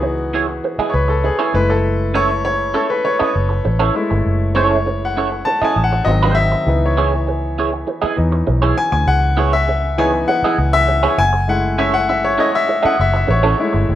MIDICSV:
0, 0, Header, 1, 7, 480
1, 0, Start_track
1, 0, Tempo, 603015
1, 1465, Time_signature, 4, 2, 24, 8
1, 11105, End_track
2, 0, Start_track
2, 0, Title_t, "Celesta"
2, 0, Program_c, 0, 8
2, 1938, Note_on_c, 0, 83, 52
2, 2718, Note_off_c, 0, 83, 0
2, 5781, Note_on_c, 0, 80, 58
2, 6560, Note_off_c, 0, 80, 0
2, 8901, Note_on_c, 0, 78, 57
2, 9680, Note_off_c, 0, 78, 0
2, 11105, End_track
3, 0, Start_track
3, 0, Title_t, "Grand piano"
3, 0, Program_c, 1, 0
3, 0, Control_c, 1, 64, 127
3, 0, Note_on_c, 1, 52, 53
3, 0, Note_on_c, 1, 59, 54
3, 0, Note_on_c, 1, 63, 60
3, 0, Note_on_c, 1, 66, 89
3, 0, Note_on_c, 1, 68, 73
3, 100, Note_off_c, 1, 52, 0
3, 102, Note_off_c, 1, 59, 0
3, 105, Note_off_c, 1, 63, 0
3, 232, Note_off_c, 1, 68, 0
3, 714, Note_on_c, 1, 73, 65
3, 744, Note_off_c, 1, 73, 0
3, 745, Note_on_c, 1, 71, 74
3, 868, Note_off_c, 1, 71, 0
3, 872, Note_on_c, 1, 69, 75
3, 992, Note_off_c, 1, 69, 0
3, 993, Note_on_c, 1, 68, 74
3, 1221, Note_on_c, 1, 56, 60
3, 1224, Note_on_c, 1, 57, 52
3, 1231, Note_on_c, 1, 71, 91
3, 1232, Note_on_c, 1, 64, 56
3, 1233, Control_c, 1, 64, 0
3, 1236, Note_off_c, 1, 68, 0
3, 1240, Note_off_c, 1, 66, 0
3, 1351, Note_off_c, 1, 71, 0
3, 1354, Note_on_c, 1, 69, 83
3, 1369, Control_c, 1, 64, 127
3, 1542, Note_off_c, 1, 56, 0
3, 1544, Note_off_c, 1, 57, 0
3, 1547, Note_off_c, 1, 64, 0
3, 1714, Note_on_c, 1, 73, 96
3, 1720, Note_off_c, 1, 69, 0
3, 1937, Note_off_c, 1, 73, 0
3, 1948, Note_on_c, 1, 73, 94
3, 2183, Note_on_c, 1, 69, 84
3, 2194, Note_off_c, 1, 73, 0
3, 2306, Note_on_c, 1, 71, 80
3, 2308, Note_off_c, 1, 69, 0
3, 2426, Note_on_c, 1, 73, 85
3, 2429, Note_off_c, 1, 71, 0
3, 3113, Note_off_c, 1, 73, 0
3, 3142, Note_on_c, 1, 56, 56
3, 3145, Note_on_c, 1, 57, 54
3, 3148, Note_on_c, 1, 64, 66
3, 3620, Note_on_c, 1, 73, 85
3, 4019, Note_on_c, 1, 78, 76
3, 4034, Note_off_c, 1, 73, 0
3, 4338, Note_on_c, 1, 81, 104
3, 4351, Note_off_c, 1, 78, 0
3, 4494, Note_on_c, 1, 80, 83
3, 4506, Note_off_c, 1, 81, 0
3, 4646, Note_on_c, 1, 78, 86
3, 4664, Note_off_c, 1, 80, 0
3, 4686, Note_off_c, 1, 78, 0
3, 4791, Note_off_c, 1, 56, 0
3, 4793, Note_off_c, 1, 57, 0
3, 4795, Note_off_c, 1, 64, 0
3, 4813, Note_on_c, 1, 75, 90
3, 4820, Note_on_c, 1, 54, 58
3, 4827, Note_on_c, 1, 60, 47
3, 4833, Note_on_c, 1, 51, 59
3, 4836, Control_c, 1, 64, 0
3, 4983, Control_c, 1, 64, 127
3, 5052, Note_on_c, 1, 76, 96
3, 5066, Note_off_c, 1, 75, 0
3, 5278, Note_off_c, 1, 54, 0
3, 5282, Note_off_c, 1, 60, 0
3, 5285, Note_off_c, 1, 51, 0
3, 5304, Note_on_c, 1, 52, 47
3, 5311, Note_on_c, 1, 59, 47
3, 5313, Note_on_c, 1, 63, 58
3, 5316, Control_c, 1, 64, 0
3, 5457, Note_on_c, 1, 73, 62
3, 5468, Control_c, 1, 64, 127
3, 5471, Note_off_c, 1, 76, 0
3, 5684, Note_off_c, 1, 73, 0
3, 6487, Note_off_c, 1, 52, 0
3, 6493, Note_off_c, 1, 59, 0
3, 6499, Note_off_c, 1, 63, 0
3, 6499, Note_on_c, 1, 52, 44
3, 6505, Note_on_c, 1, 59, 37
3, 6511, Note_on_c, 1, 63, 54
3, 6718, Note_off_c, 1, 52, 0
3, 6721, Note_off_c, 1, 59, 0
3, 6724, Note_off_c, 1, 63, 0
3, 6985, Note_on_c, 1, 80, 100
3, 7090, Note_off_c, 1, 80, 0
3, 7102, Note_on_c, 1, 80, 88
3, 7224, Note_on_c, 1, 78, 94
3, 7227, Note_off_c, 1, 80, 0
3, 7586, Note_on_c, 1, 76, 95
3, 7596, Note_off_c, 1, 78, 0
3, 7942, Note_on_c, 1, 52, 50
3, 7947, Note_on_c, 1, 59, 52
3, 7947, Note_on_c, 1, 80, 94
3, 7952, Note_on_c, 1, 63, 61
3, 7956, Note_off_c, 1, 76, 0
3, 8170, Note_off_c, 1, 80, 0
3, 8181, Note_on_c, 1, 78, 92
3, 8263, Note_off_c, 1, 52, 0
3, 8265, Note_off_c, 1, 59, 0
3, 8268, Note_off_c, 1, 63, 0
3, 8543, Note_on_c, 1, 76, 113
3, 8554, Note_off_c, 1, 78, 0
3, 8903, Note_on_c, 1, 80, 107
3, 8915, Note_off_c, 1, 76, 0
3, 8916, Control_c, 1, 64, 0
3, 9029, Control_c, 1, 64, 127
3, 9136, Note_on_c, 1, 56, 50
3, 9141, Note_on_c, 1, 57, 43
3, 9145, Note_on_c, 1, 64, 55
3, 9148, Note_on_c, 1, 78, 91
3, 9151, Note_off_c, 1, 80, 0
3, 9382, Note_on_c, 1, 76, 84
3, 9394, Note_off_c, 1, 78, 0
3, 9502, Note_on_c, 1, 78, 93
3, 9507, Note_off_c, 1, 76, 0
3, 9541, Note_off_c, 1, 78, 0
3, 9624, Note_on_c, 1, 76, 78
3, 9747, Note_on_c, 1, 73, 82
3, 9748, Note_off_c, 1, 76, 0
3, 9869, Note_off_c, 1, 73, 0
3, 9869, Note_on_c, 1, 75, 85
3, 9990, Note_off_c, 1, 75, 0
3, 9992, Note_on_c, 1, 76, 95
3, 10231, Note_on_c, 1, 78, 84
3, 10235, Note_off_c, 1, 76, 0
3, 10351, Note_off_c, 1, 78, 0
3, 10354, Note_on_c, 1, 76, 81
3, 10462, Note_off_c, 1, 76, 0
3, 10474, Note_on_c, 1, 76, 80
3, 10591, Note_on_c, 1, 73, 79
3, 10592, Note_off_c, 1, 76, 0
3, 10808, Note_off_c, 1, 56, 0
3, 10811, Note_off_c, 1, 57, 0
3, 10816, Note_off_c, 1, 64, 0
3, 10820, Note_on_c, 1, 56, 53
3, 10823, Note_on_c, 1, 57, 55
3, 10828, Note_on_c, 1, 64, 68
3, 11105, Note_off_c, 1, 56, 0
3, 11105, Note_off_c, 1, 57, 0
3, 11105, Note_off_c, 1, 64, 0
3, 11105, Note_off_c, 1, 73, 0
3, 11105, End_track
4, 0, Start_track
4, 0, Title_t, "Clean electric guitar"
4, 0, Program_c, 2, 27
4, 267, Note_on_c, 2, 59, 45
4, 272, Note_on_c, 2, 64, 52
4, 277, Note_on_c, 2, 68, 51
4, 279, Note_on_c, 2, 73, 52
4, 358, Note_off_c, 2, 59, 0
4, 361, Note_off_c, 2, 64, 0
4, 364, Note_off_c, 2, 68, 0
4, 364, Note_off_c, 2, 73, 0
4, 629, Note_on_c, 2, 75, 65
4, 632, Note_on_c, 2, 68, 64
4, 637, Note_on_c, 2, 64, 61
4, 641, Note_on_c, 2, 59, 55
4, 734, Note_off_c, 2, 59, 0
4, 740, Note_off_c, 2, 64, 0
4, 741, Note_off_c, 2, 68, 0
4, 745, Note_off_c, 2, 75, 0
4, 1104, Note_on_c, 2, 73, 74
4, 1110, Note_on_c, 2, 64, 68
4, 1110, Note_on_c, 2, 68, 72
4, 1114, Note_on_c, 2, 59, 58
4, 1222, Note_off_c, 2, 73, 0
4, 1225, Note_off_c, 2, 64, 0
4, 1225, Note_off_c, 2, 68, 0
4, 1228, Note_off_c, 2, 59, 0
4, 1705, Note_on_c, 2, 61, 65
4, 1708, Note_on_c, 2, 64, 75
4, 1712, Note_on_c, 2, 69, 75
4, 1714, Note_on_c, 2, 73, 76
4, 1823, Note_off_c, 2, 61, 0
4, 1824, Note_off_c, 2, 64, 0
4, 1826, Note_off_c, 2, 69, 0
4, 1828, Note_off_c, 2, 73, 0
4, 2181, Note_on_c, 2, 61, 55
4, 2183, Note_on_c, 2, 64, 59
4, 2190, Note_on_c, 2, 69, 61
4, 2191, Note_on_c, 2, 73, 59
4, 2275, Note_off_c, 2, 61, 0
4, 2276, Note_off_c, 2, 64, 0
4, 2280, Note_off_c, 2, 69, 0
4, 2280, Note_off_c, 2, 73, 0
4, 2543, Note_on_c, 2, 75, 71
4, 2544, Note_on_c, 2, 69, 64
4, 2549, Note_on_c, 2, 61, 64
4, 2549, Note_on_c, 2, 64, 62
4, 2653, Note_off_c, 2, 61, 0
4, 2654, Note_off_c, 2, 69, 0
4, 2656, Note_off_c, 2, 64, 0
4, 2662, Note_off_c, 2, 75, 0
4, 3020, Note_on_c, 2, 73, 81
4, 3022, Note_on_c, 2, 69, 78
4, 3023, Note_on_c, 2, 64, 72
4, 3031, Note_on_c, 2, 61, 60
4, 3137, Note_off_c, 2, 61, 0
4, 3140, Note_off_c, 2, 73, 0
4, 3141, Note_off_c, 2, 69, 0
4, 3142, Note_off_c, 2, 64, 0
4, 3625, Note_on_c, 2, 61, 75
4, 3629, Note_on_c, 2, 64, 73
4, 3633, Note_on_c, 2, 73, 86
4, 3634, Note_on_c, 2, 69, 78
4, 3785, Note_off_c, 2, 61, 0
4, 3787, Note_off_c, 2, 64, 0
4, 3789, Note_off_c, 2, 69, 0
4, 3789, Note_off_c, 2, 73, 0
4, 4112, Note_on_c, 2, 61, 44
4, 4116, Note_on_c, 2, 64, 52
4, 4120, Note_on_c, 2, 69, 50
4, 4126, Note_on_c, 2, 73, 52
4, 4201, Note_off_c, 2, 61, 0
4, 4203, Note_off_c, 2, 64, 0
4, 4205, Note_off_c, 2, 69, 0
4, 4208, Note_off_c, 2, 73, 0
4, 4470, Note_on_c, 2, 75, 67
4, 4479, Note_on_c, 2, 64, 65
4, 4479, Note_on_c, 2, 69, 61
4, 4484, Note_on_c, 2, 61, 55
4, 4586, Note_off_c, 2, 75, 0
4, 4588, Note_off_c, 2, 61, 0
4, 4590, Note_off_c, 2, 64, 0
4, 4590, Note_off_c, 2, 69, 0
4, 4955, Note_on_c, 2, 72, 77
4, 4960, Note_on_c, 2, 66, 73
4, 4962, Note_on_c, 2, 63, 78
4, 4963, Note_on_c, 2, 56, 64
4, 5070, Note_off_c, 2, 63, 0
4, 5072, Note_off_c, 2, 56, 0
4, 5074, Note_off_c, 2, 66, 0
4, 5075, Note_off_c, 2, 72, 0
4, 5550, Note_on_c, 2, 59, 58
4, 5552, Note_on_c, 2, 64, 69
4, 5557, Note_on_c, 2, 68, 68
4, 5559, Note_on_c, 2, 73, 70
4, 5665, Note_off_c, 2, 59, 0
4, 5666, Note_off_c, 2, 64, 0
4, 5669, Note_off_c, 2, 68, 0
4, 5670, Note_off_c, 2, 73, 0
4, 6037, Note_on_c, 2, 59, 46
4, 6038, Note_on_c, 2, 64, 47
4, 6045, Note_on_c, 2, 68, 57
4, 6046, Note_on_c, 2, 73, 55
4, 6123, Note_off_c, 2, 59, 0
4, 6124, Note_off_c, 2, 64, 0
4, 6127, Note_off_c, 2, 68, 0
4, 6128, Note_off_c, 2, 73, 0
4, 6381, Note_on_c, 2, 75, 74
4, 6384, Note_on_c, 2, 68, 72
4, 6390, Note_on_c, 2, 64, 66
4, 6392, Note_on_c, 2, 59, 65
4, 6494, Note_off_c, 2, 59, 0
4, 6497, Note_off_c, 2, 64, 0
4, 6498, Note_off_c, 2, 68, 0
4, 6501, Note_off_c, 2, 75, 0
4, 6860, Note_on_c, 2, 73, 71
4, 6866, Note_on_c, 2, 68, 71
4, 6869, Note_on_c, 2, 64, 66
4, 6871, Note_on_c, 2, 59, 60
4, 6972, Note_off_c, 2, 59, 0
4, 6976, Note_off_c, 2, 64, 0
4, 6981, Note_off_c, 2, 73, 0
4, 6983, Note_off_c, 2, 68, 0
4, 7458, Note_on_c, 2, 59, 77
4, 7462, Note_on_c, 2, 64, 75
4, 7467, Note_on_c, 2, 68, 77
4, 7473, Note_on_c, 2, 73, 83
4, 7580, Note_off_c, 2, 59, 0
4, 7581, Note_off_c, 2, 64, 0
4, 7584, Note_off_c, 2, 68, 0
4, 7587, Note_off_c, 2, 73, 0
4, 7947, Note_on_c, 2, 64, 51
4, 7950, Note_on_c, 2, 59, 53
4, 7954, Note_on_c, 2, 68, 59
4, 7955, Note_on_c, 2, 73, 58
4, 8038, Note_off_c, 2, 64, 0
4, 8040, Note_off_c, 2, 59, 0
4, 8042, Note_off_c, 2, 68, 0
4, 8042, Note_off_c, 2, 73, 0
4, 8313, Note_on_c, 2, 75, 68
4, 8317, Note_on_c, 2, 68, 70
4, 8321, Note_on_c, 2, 64, 73
4, 8323, Note_on_c, 2, 59, 60
4, 8417, Note_off_c, 2, 64, 0
4, 8418, Note_off_c, 2, 59, 0
4, 8422, Note_off_c, 2, 68, 0
4, 8427, Note_off_c, 2, 75, 0
4, 8779, Note_on_c, 2, 73, 80
4, 8782, Note_on_c, 2, 68, 73
4, 8786, Note_on_c, 2, 64, 70
4, 8789, Note_on_c, 2, 59, 62
4, 8893, Note_off_c, 2, 64, 0
4, 8896, Note_off_c, 2, 73, 0
4, 8897, Note_off_c, 2, 59, 0
4, 8900, Note_off_c, 2, 68, 0
4, 9379, Note_on_c, 2, 61, 69
4, 9381, Note_on_c, 2, 64, 69
4, 9383, Note_on_c, 2, 69, 64
4, 9386, Note_on_c, 2, 73, 75
4, 9500, Note_off_c, 2, 61, 0
4, 9501, Note_off_c, 2, 64, 0
4, 9502, Note_off_c, 2, 69, 0
4, 9504, Note_off_c, 2, 73, 0
4, 9852, Note_on_c, 2, 61, 48
4, 9854, Note_on_c, 2, 64, 54
4, 9860, Note_on_c, 2, 69, 52
4, 9864, Note_on_c, 2, 73, 53
4, 9951, Note_off_c, 2, 61, 0
4, 9952, Note_off_c, 2, 64, 0
4, 9955, Note_off_c, 2, 69, 0
4, 9957, Note_off_c, 2, 73, 0
4, 10210, Note_on_c, 2, 75, 68
4, 10213, Note_on_c, 2, 69, 68
4, 10214, Note_on_c, 2, 64, 62
4, 10219, Note_on_c, 2, 61, 56
4, 10320, Note_off_c, 2, 61, 0
4, 10321, Note_off_c, 2, 64, 0
4, 10324, Note_off_c, 2, 69, 0
4, 10332, Note_off_c, 2, 75, 0
4, 10691, Note_on_c, 2, 73, 76
4, 10693, Note_on_c, 2, 64, 66
4, 10695, Note_on_c, 2, 69, 81
4, 10700, Note_on_c, 2, 61, 70
4, 10794, Note_off_c, 2, 61, 0
4, 10797, Note_off_c, 2, 69, 0
4, 10800, Note_off_c, 2, 64, 0
4, 10803, Note_off_c, 2, 73, 0
4, 11105, End_track
5, 0, Start_track
5, 0, Title_t, "Fingered electric bass"
5, 0, Program_c, 3, 33
5, 0, Note_on_c, 3, 37, 78
5, 473, Note_off_c, 3, 37, 0
5, 747, Note_on_c, 3, 37, 84
5, 1030, Note_off_c, 3, 37, 0
5, 1227, Note_on_c, 3, 30, 105
5, 2173, Note_off_c, 3, 30, 0
5, 2671, Note_on_c, 3, 30, 89
5, 2858, Note_off_c, 3, 30, 0
5, 2910, Note_on_c, 3, 33, 91
5, 3097, Note_off_c, 3, 33, 0
5, 3272, Note_on_c, 3, 31, 90
5, 3364, Note_off_c, 3, 31, 0
5, 3393, Note_on_c, 3, 30, 80
5, 4317, Note_off_c, 3, 30, 0
5, 4586, Note_on_c, 3, 33, 78
5, 4775, Note_off_c, 3, 33, 0
5, 4823, Note_on_c, 3, 32, 104
5, 5202, Note_off_c, 3, 32, 0
5, 5306, Note_on_c, 3, 37, 88
5, 6233, Note_off_c, 3, 37, 0
5, 6514, Note_on_c, 3, 40, 83
5, 6700, Note_off_c, 3, 40, 0
5, 6752, Note_on_c, 3, 35, 97
5, 6939, Note_off_c, 3, 35, 0
5, 7103, Note_on_c, 3, 38, 92
5, 7199, Note_off_c, 3, 38, 0
5, 7220, Note_on_c, 3, 37, 98
5, 8150, Note_off_c, 3, 37, 0
5, 8424, Note_on_c, 3, 37, 89
5, 8803, Note_off_c, 3, 37, 0
5, 8899, Note_on_c, 3, 30, 89
5, 9848, Note_off_c, 3, 30, 0
5, 10344, Note_on_c, 3, 30, 90
5, 10533, Note_off_c, 3, 30, 0
5, 10577, Note_on_c, 3, 33, 104
5, 10769, Note_off_c, 3, 33, 0
5, 10937, Note_on_c, 3, 31, 91
5, 11034, Note_off_c, 3, 31, 0
5, 11058, Note_on_c, 3, 30, 96
5, 11105, Note_off_c, 3, 30, 0
5, 11105, End_track
6, 0, Start_track
6, 0, Title_t, "Muted clean electric guitar strokes"
6, 19, Note_on_c, 9, 29, 39
6, 98, Note_off_c, 9, 29, 0
6, 382, Note_on_c, 9, 29, 42
6, 462, Note_off_c, 9, 29, 0
6, 511, Note_on_c, 9, 29, 31
6, 590, Note_off_c, 9, 29, 0
6, 743, Note_on_c, 9, 29, 29
6, 823, Note_off_c, 9, 29, 0
6, 861, Note_on_c, 9, 29, 46
6, 941, Note_off_c, 9, 29, 0
6, 987, Note_on_c, 9, 29, 42
6, 1066, Note_off_c, 9, 29, 0
6, 1233, Note_on_c, 9, 29, 33
6, 1312, Note_off_c, 9, 29, 0
6, 1350, Note_on_c, 9, 29, 43
6, 1430, Note_off_c, 9, 29, 0
6, 1954, Note_on_c, 9, 29, 30
6, 2034, Note_off_c, 9, 29, 0
6, 2314, Note_on_c, 9, 29, 41
6, 2393, Note_off_c, 9, 29, 0
6, 2427, Note_on_c, 9, 29, 36
6, 2507, Note_off_c, 9, 29, 0
6, 2662, Note_on_c, 9, 29, 36
6, 2742, Note_off_c, 9, 29, 0
6, 2778, Note_on_c, 9, 29, 41
6, 2858, Note_off_c, 9, 29, 0
6, 2903, Note_on_c, 9, 29, 27
6, 2982, Note_off_c, 9, 29, 0
6, 3266, Note_on_c, 9, 29, 45
6, 3346, Note_off_c, 9, 29, 0
6, 3870, Note_on_c, 9, 29, 34
6, 3950, Note_off_c, 9, 29, 0
6, 4234, Note_on_c, 9, 29, 40
6, 4314, Note_off_c, 9, 29, 0
6, 4348, Note_on_c, 9, 29, 30
6, 4428, Note_off_c, 9, 29, 0
6, 4598, Note_on_c, 9, 29, 26
6, 4677, Note_off_c, 9, 29, 0
6, 4717, Note_on_c, 9, 29, 49
6, 4796, Note_off_c, 9, 29, 0
6, 4833, Note_on_c, 9, 29, 34
6, 4913, Note_off_c, 9, 29, 0
6, 5079, Note_on_c, 9, 29, 35
6, 5159, Note_off_c, 9, 29, 0
6, 5188, Note_on_c, 9, 29, 41
6, 5268, Note_off_c, 9, 29, 0
6, 5792, Note_on_c, 9, 29, 32
6, 5872, Note_off_c, 9, 29, 0
6, 6153, Note_on_c, 9, 29, 38
6, 6232, Note_off_c, 9, 29, 0
6, 6265, Note_on_c, 9, 29, 37
6, 6345, Note_off_c, 9, 29, 0
6, 6503, Note_on_c, 9, 29, 26
6, 6583, Note_off_c, 9, 29, 0
6, 6625, Note_on_c, 9, 29, 37
6, 6705, Note_off_c, 9, 29, 0
6, 6742, Note_on_c, 9, 29, 40
6, 6822, Note_off_c, 9, 29, 0
6, 6982, Note_on_c, 9, 29, 32
6, 7061, Note_off_c, 9, 29, 0
6, 7103, Note_on_c, 9, 29, 29
6, 7183, Note_off_c, 9, 29, 0
6, 7705, Note_on_c, 9, 29, 34
6, 7785, Note_off_c, 9, 29, 0
6, 8071, Note_on_c, 9, 29, 39
6, 8150, Note_off_c, 9, 29, 0
6, 8187, Note_on_c, 9, 29, 36
6, 8267, Note_off_c, 9, 29, 0
6, 8426, Note_on_c, 9, 29, 30
6, 8506, Note_off_c, 9, 29, 0
6, 8545, Note_on_c, 9, 29, 44
6, 8624, Note_off_c, 9, 29, 0
6, 8660, Note_on_c, 9, 29, 33
6, 8740, Note_off_c, 9, 29, 0
6, 8900, Note_on_c, 9, 29, 40
6, 8980, Note_off_c, 9, 29, 0
6, 9017, Note_on_c, 9, 29, 38
6, 9097, Note_off_c, 9, 29, 0
6, 9626, Note_on_c, 9, 29, 38
6, 9706, Note_off_c, 9, 29, 0
6, 9979, Note_on_c, 9, 29, 37
6, 10059, Note_off_c, 9, 29, 0
6, 10098, Note_on_c, 9, 29, 35
6, 10178, Note_off_c, 9, 29, 0
6, 10329, Note_on_c, 9, 29, 27
6, 10409, Note_off_c, 9, 29, 0
6, 10455, Note_on_c, 9, 29, 52
6, 10535, Note_off_c, 9, 29, 0
6, 10566, Note_on_c, 9, 29, 33
6, 10645, Note_off_c, 9, 29, 0
6, 10804, Note_on_c, 9, 29, 34
6, 10883, Note_off_c, 9, 29, 0
6, 10927, Note_on_c, 9, 29, 46
6, 11007, Note_off_c, 9, 29, 0
6, 11105, End_track
7, 0, Start_track
7, 0, Title_t, "Muted fingered electric bass strokes"
7, 624, Note_on_c, 9, 29, 50
7, 703, Note_off_c, 9, 29, 0
7, 2555, Note_on_c, 9, 29, 47
7, 2635, Note_off_c, 9, 29, 0
7, 4470, Note_on_c, 9, 29, 48
7, 4550, Note_off_c, 9, 29, 0
7, 6394, Note_on_c, 9, 29, 42
7, 6474, Note_off_c, 9, 29, 0
7, 8298, Note_on_c, 9, 29, 49
7, 8378, Note_off_c, 9, 29, 0
7, 10226, Note_on_c, 9, 29, 49
7, 10306, Note_off_c, 9, 29, 0
7, 11105, End_track
0, 0, End_of_file